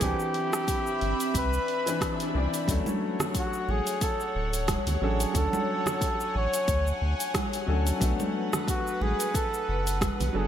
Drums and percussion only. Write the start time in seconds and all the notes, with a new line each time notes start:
0.01 kick, open hi-hat, shaker
0.20 shaker
0.34 open hi-hat
0.53 cross-stick, shaker
0.68 kick, open hi-hat, shaker
0.87 shaker
1.01 open hi-hat
1.20 open hi-hat, shaker
1.34 kick, open hi-hat, shaker
1.53 shaker
1.68 open hi-hat
1.87 open hi-hat, shaker
2.01 kick, cross-stick, open hi-hat, shaker
2.20 open hi-hat, shaker
2.54 open hi-hat, shaker
2.68 kick, open hi-hat, shaker
2.86 high bongo, high conga, shaker
3.20 cross-stick, low conga, shaker
3.35 kick, open hi-hat, shaker
3.53 shaker
3.69 high conga
3.87 open hi-hat, shaker
4.01 kick, open hi-hat, high bongo, shaker
4.20 shaker
4.53 open hi-hat, shaker
4.68 kick, cross-stick, open hi-hat, high conga, shaker
4.87 open hi-hat, low conga, shaker
5.20 open hi-hat, high bongo, shaker
5.35 kick, open hi-hat, shaker
5.53 high bongo, high conga, shaker
5.86 cross-stick, low conga, shaker
6.01 kick, open hi-hat, shaker
6.20 shaker
6.54 open hi-hat, shaker
6.68 kick, open hi-hat, shaker
6.87 shaker
7.20 open hi-hat, shaker
7.34 kick, cross-stick, open hi-hat, high conga, shaker
7.53 open hi-hat, high bongo, shaker
7.87 open hi-hat, shaker
8.01 kick, open hi-hat, shaker
8.20 high bongo, high conga, shaker
8.53 cross-stick, low conga, shaker
8.68 kick, open hi-hat, shaker
8.87 shaker
9.01 high conga
9.20 open hi-hat, shaker
9.35 kick, open hi-hat, high bongo, shaker
9.54 shaker
9.87 open hi-hat, shaker
10.01 kick, cross-stick, open hi-hat, high conga, shaker
10.20 open hi-hat, low conga, shaker